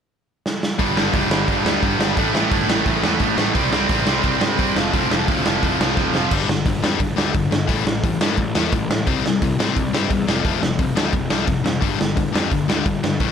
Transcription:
0.46 snare
0.63 snare
0.79 G1 G2 D3 G3, kick, open hi-hat
0.96 G1 G2 D3 G3, snare
1.13 F1 G2 D3 G3, kick, open hi-hat
1.30 G1 G2 D3 G3, snare
1.47 G1 G2 D3 G3, kick, open hi-hat
1.65 D2 G2 D3 G3, snare
1.82 G1 G2 D3 G3, kick, open hi-hat
1.99 G1 G2 D3 G3, snare
2.17 A1 A2 E3 A3, kick, open hi-hat
2.34 A1 A2 E3 A3, snare
2.51 G1 A2 E3 A3, kick, open hi-hat
2.68 A1 A2 E3 A3, snare
2.85 A1 A2 E3 A3, kick, open hi-hat
3.02 E2 A2 E3 A3, snare
3.20 A1 A2 E3 A3, kick, open hi-hat
3.37 A1 A2 E3 A3, snare
3.54 C2 C3 G3 C4, kick, open hi-hat
3.72 C2 C3 G3 C4, snare
3.89 A1 C3 G3 C4, kick, open hi-hat
4.06 C2 C3 G3 C4, snare
4.23 C2 C3 G3 C4, kick, open hi-hat
4.40 G2 C3 G3 C4, snare
4.58 G2 C3 G3 C4, kick, open hi-hat
4.76 F1 F2 C3 F3, snare
4.94 F1 F2 C3 F3, kick, open hi-hat
5.11 F1 F2 C3 F3, snare
5.28 D2 F2 C3 F3, kick, open hi-hat
5.46 F1 F2 C3 F3, snare
5.63 F1 F2 C3 F3, kick, open hi-hat
5.80 C2 F2 C3 F3, snare
5.96 F1 F2 C3 F3, kick, snare
6.14 F1 F2 C3 F3, snare
6.31 G1 G2 D3 G3, kick, crash
6.48 G1 G2 D3, snare
6.66 G1 G2 D3, kick, open hi-hat
6.82 F2 G2 D3 G3, snare
7.00 G1 G2 D3, kick, open hi-hat
7.16 D2 G2 D3 G3, snare
7.34 G1 G2 D3, kick, open hi-hat
7.51 G1 G2 D3, snare
7.67 A1 A2 E3 A3, kick, open hi-hat
7.85 A1 A2 E3, snare
8.03 A1 A2 E3, kick, open hi-hat
8.21 G2 A2 E3 A3, snare
8.37 A1 A2 E3, kick, open hi-hat
8.55 E2 A2 E3 A3, snare
8.72 A1 A2 E3, kick, open hi-hat
8.90 A2 E3, snare
9.07 C2 C3 G3 C4, kick, open hi-hat
9.24 C2 C3 G3, snare
9.42 C2 C3 G3, kick, open hi-hat
9.59 A2 C3 G3 C4, snare
9.76 C2 C3 G3, kick, open hi-hat
9.93 G2 C3 G3 C4, snare
10.10 E2 C3 G3, kick, open hi-hat
10.27 F1 F2 C3 F3, snare
10.44 F1 F2 C3 F3, kick, open hi-hat
10.61 F1 F2 C3, snare
10.79 F1 F2 C3, kick, open hi-hat
10.96 D2 F2 C3 F3, snare
11.13 F1 F2 C3, kick, open hi-hat
11.30 C2 F2 C3 F3, snare
11.47 F1 F2 C3, kick, open hi-hat
11.64 F2 C3, snare
11.80 G1 G2 D3 G3, kick, open hi-hat
11.99 G1 G2 D3, snare
12.16 G1 G2 D3, kick, open hi-hat
12.33 F2 G2 D3 G3, snare
12.52 G1 G2 D3, kick, open hi-hat
12.68 D2 G2 D3 G3, snare
12.86 G1 G2 D3, kick, open hi-hat
13.03 G2 D3, snare
13.20 A1 A2 E3 A3, kick, open hi-hat

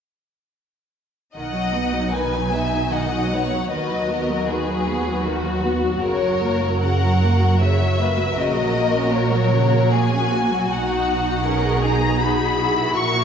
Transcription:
1.36 B1 B2 D#3 D#4 D#5 F#5
1.55 F#3
1.75 B3
1.95 F#3
2.13 D#3 B4 G#5
2.34 F#3
2.53 B3 E5
2.73 F#3
2.92 D#3 D#5 F#5
3.13 F#3
3.33 B3 C#5
3.53 F#3
3.71 D#2 D#3 F#4 B4 D#5
3.92 F#3
4.11 B3 A#4
4.30 F#3
4.49 D#3 G#4 B4
4.69 F#3
4.88 B3
5.08 F#3
5.27 D#3 F#4
5.46 F#3
5.65 B3
5.84 F#3
6.02 F#1 F#2 C#3 A#4 C#5
6.22 F#3
6.43 A#3
6.64 F#3
6.83 C#3 A#4 F#5
7.05 F#3
7.23 A#3
7.43 F#3
7.62 C#3 C#5 E5
7.81 F#3
8.00 A#3 B4
8.19 F#3
8.37 A#1 A#2 C#3 F#4 A#4 D#5
8.57 F#3
8.75 A#3
8.94 C#4
9.13 A#3 C#5
9.33 F#3
9.54 C#3
9.74 F#3
9.93 A#3 G#4 G#5
10.14 C#4
10.32 A#3 F#4
10.53 F#3
10.71 B1 B2 D#4 F#4 F#5
11.46 C#4 G#4 A#4
11.83 D#4 G#4 A#5
12.20 D#4 F#4 B5
12.59 E4
12.94 A#1 A#2 F#4 A#4 C#6

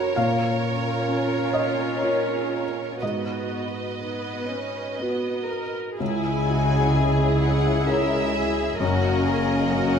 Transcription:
Already playing: F#2 A#3 C#4 F#4 A#4 C#5 A#5 B5
0.15 A#2 C#4 F4 F5
0.46 A#4
0.75 C#4
1.07 C#4 A#4
1.38 F4
1.53 D#5
1.70 C#4
2.01 F4 A#4 C#5
2.35 G#4
2.69 A#4
3.01 G#2 B3 F#4 B4 D#5
3.35 B4
3.67 B3
4.00 B3 D#4 B4
4.33 F#4
4.51 C#4
4.99 B3 F#4 B4
5.34 A#5
5.50 A#4
5.67 B4
5.98 C#2 C#3 G#3 E4 G#4 G#5
6.32 G#4
6.47 F#4
6.64 C#4
6.94 C#4 G#4
7.26 E4
7.42 F#5
7.57 C#4
7.87 E4 G#4 A#4 C#5 E5
8.19 F#4
8.34 G#4
8.50 G#4
8.80 F#1 F#2 A#3 C#4 F#4 A#4 D#5
9.11 A#4
9.27 G#4
9.42 C#4
9.71 C#4 F#4 A#4

